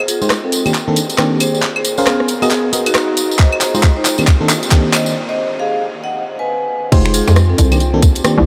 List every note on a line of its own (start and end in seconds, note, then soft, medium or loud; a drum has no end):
0.00 0.97 F4 medium
0.00 0.14 G#4 medium
0.00 0.14 D#5 medium
0.00 0.14 A#5 medium
0.05 0.25 F4 medium
0.05 0.25 G#4 medium
0.05 0.96 C5 medium
0.05 0.96 G5 medium
0.05 open hi-hat loud
0.05 tambourine medium
0.22 0.33 G#3 medium
0.22 0.33 D#4 medium
0.22 0.33 F4 medium
0.22 0.33 G4 medium
0.22 0.33 C5 medium
0.22 tambourine soft
0.30 cross-stick loud
0.30 clap soft
0.30 closed hi-hat medium
0.30 tambourine soft
0.44 0.58 C4 medium
0.44 0.58 A4 medium
0.52 1.90 C4 medium
0.52 open hi-hat loud
0.52 tambourine medium
0.61 1.90 G4 medium
0.66 0.72 D#3 medium
0.66 0.72 A#3 medium
0.66 0.72 C4 medium
0.66 0.72 D4 medium
0.66 0.72 G4 medium
0.66 closed hi-hat soft
0.66 tambourine soft
0.66 claves medium
0.74 clap soft
0.74 closed hi-hat medium
0.74 tambourine soft
0.88 0.99 D#3 medium
0.88 0.99 A#3 medium
0.88 0.99 C4 medium
0.88 0.99 D4 medium
0.88 0.99 A4 medium
0.96 open hi-hat loud
0.96 tambourine medium
1.09 closed hi-hat medium
1.09 tambourine soft
1.18 1.62 D#3 medium
1.18 1.62 A#3 medium
1.18 1.62 C4 medium
1.18 1.62 D4 medium
1.18 1.62 G4 medium
1.18 cross-stick loud
1.18 clap medium
1.18 closed hi-hat medium
1.18 tambourine soft
1.40 1.58 G#4 medium
1.40 1.58 C5 medium
1.40 open hi-hat loud
1.40 tambourine medium
1.40 claves medium
1.54 tambourine soft
1.62 2.73 A#4 medium
1.62 clap medium
1.62 closed hi-hat medium
1.62 tambourine soft
1.67 2.73 F5 medium
1.76 1.91 G#4 medium
1.76 1.91 C5 medium
1.76 claves medium
1.85 open hi-hat loud
1.85 tambourine medium
1.97 2.28 C#4 medium
1.97 2.28 G#4 medium
1.97 2.28 A#4 medium
1.97 2.28 C5 medium
1.97 2.28 F5 loud
1.97 tambourine medium
2.07 2.28 B3 medium
2.07 2.28 G#4 medium
2.07 cross-stick loud
2.07 clap medium
2.07 closed hi-hat medium
2.07 tambourine soft
2.20 cross-stick medium
2.28 3.67 G#4 loud
2.28 open hi-hat loud
2.28 tambourine medium
2.42 2.49 B3 medium
2.42 2.49 F#4 medium
2.42 2.49 G#4 medium
2.42 2.49 A#4 medium
2.42 2.49 D#5 loud
2.42 closed hi-hat soft
2.42 tambourine medium
2.42 claves medium
2.47 2.68 B3 medium
2.47 2.68 G#4 medium
2.47 3.66 A#5 medium
2.47 clap medium
2.47 closed hi-hat medium
2.52 3.67 D#5 medium
2.52 tambourine soft
2.73 2.88 B3 medium
2.73 2.88 F#4 medium
2.73 2.88 G#4 medium
2.73 2.88 A#4 medium
2.73 2.88 D#5 medium
2.73 open hi-hat loud
2.73 tambourine medium
2.86 3.32 D#4 medium
2.86 3.32 F#4 medium
2.86 closed hi-hat medium
2.86 tambourine medium
2.86 claves medium
2.95 cross-stick loud
2.95 clap medium
2.95 closed hi-hat medium
2.95 tambourine soft
3.17 open hi-hat loud
3.17 tambourine medium
3.31 tambourine medium
3.39 4.49 F4 medium
3.39 3.52 C5 medium
3.39 3.52 D#5 loud
3.39 kick medium
3.39 clap medium
3.39 closed hi-hat medium
3.52 claves medium
3.61 3.78 G#4 medium
3.61 3.78 C5 medium
3.61 4.49 C5 medium
3.61 clap medium
3.61 open hi-hat loud
3.61 tambourine loud
3.71 3.86 G#3 medium
3.71 3.86 D#4 medium
3.71 3.86 F4 medium
3.71 3.86 G4 medium
3.71 3.86 C5 medium
3.71 4.50 G5 medium
3.71 tambourine medium
3.83 kick medium
3.83 clap medium
3.83 closed hi-hat medium
3.83 tambourine soft
3.97 4.11 D#4 medium
3.97 4.11 C5 loud
4.05 5.16 C4 medium
4.05 clap medium
4.05 open hi-hat loud
4.05 tambourine loud
4.18 4.25 D#3 medium
4.18 4.25 A#3 medium
4.18 4.25 C4 medium
4.18 4.25 D4 medium
4.18 4.25 G4 medium
4.18 closed hi-hat soft
4.18 tambourine medium
4.18 claves medium
4.27 5.16 G4 medium
4.27 kick loud
4.27 clap medium
4.27 closed hi-hat medium
4.27 tambourine soft
4.41 4.52 D#3 medium
4.41 4.52 A#3 medium
4.41 4.52 C4 medium
4.41 4.52 D4 medium
4.41 4.52 A4 medium
4.41 5.16 D5 medium
4.49 clap medium
4.49 open hi-hat loud
4.49 tambourine loud
4.63 closed hi-hat medium
4.63 tambourine medium
4.71 5.15 D#3 medium
4.71 5.15 A#3 medium
4.71 5.15 C4 medium
4.71 5.15 D4 medium
4.71 5.15 G4 medium
4.71 kick medium
4.71 clap medium
4.71 closed hi-hat medium
4.71 tambourine soft
4.93 5.11 C5 medium
4.93 5.11 D#5 medium
4.93 clap medium
4.93 open hi-hat loud
4.93 tambourine medium
4.93 claves medium
5.06 tambourine medium
5.29 5.44 C5 medium
5.29 5.44 D#5 medium
5.60 5.81 G#4 medium
5.60 5.81 F5 loud
6.04 6.21 D#5 medium
6.04 6.21 F#5 medium
6.39 6.85 B4 medium
6.39 6.85 G#5 medium
6.92 7.22 F1 loud
6.92 7.22 G#3 loud
6.92 7.22 D#4 medium
6.92 7.22 F4 medium
6.92 8.02 F4 medium
6.92 7.22 G4 medium
6.92 7.05 G#4 medium
6.92 7.05 C5 loud
6.92 7.22 C5 loud
6.92 kick loud
6.92 closed hi-hat medium
6.92 crash loud
6.92 tambourine soft
6.97 8.02 C5 medium
7.06 finger snap medium
7.14 7.32 F4 medium
7.14 7.31 G#4 loud
7.14 open hi-hat loud
7.14 tambourine medium
7.24 7.55 F2 medium
7.24 7.39 G#3 medium
7.24 7.39 D#4 medium
7.24 7.39 F4 medium
7.24 7.39 G4 medium
7.24 7.39 C5 medium
7.24 8.02 G5 medium
7.24 tambourine medium
7.28 finger snap soft
7.36 cross-stick loud
7.36 closed hi-hat medium
7.36 tambourine soft
7.50 7.64 C4 medium
7.50 7.64 A4 medium
7.58 8.21 C2 medium
7.58 8.46 C4 medium
7.58 kick medium
7.58 open hi-hat loud
7.58 tambourine loud
7.71 7.78 D#3 medium
7.71 7.78 A#3 medium
7.71 7.78 C4 medium
7.71 7.78 D4 medium
7.71 8.46 G4 loud
7.71 7.78 G4 medium
7.71 closed hi-hat soft
7.71 tambourine medium
7.71 claves medium
7.80 closed hi-hat medium
7.80 tambourine soft
7.94 8.05 D#3 medium
7.94 8.05 A#3 medium
7.94 8.05 C4 medium
7.94 8.05 D4 medium
7.94 8.05 A4 medium
8.02 kick loud
8.02 open hi-hat loud
8.02 tambourine medium
8.15 closed hi-hat medium
8.15 tambourine soft
8.24 8.46 D#3 medium
8.24 8.46 A#3 medium
8.24 8.46 C4 medium
8.24 8.46 D4 medium
8.24 8.46 G4 medium
8.24 cross-stick loud
8.24 closed hi-hat medium
8.24 tambourine soft
8.38 8.46 C2 loud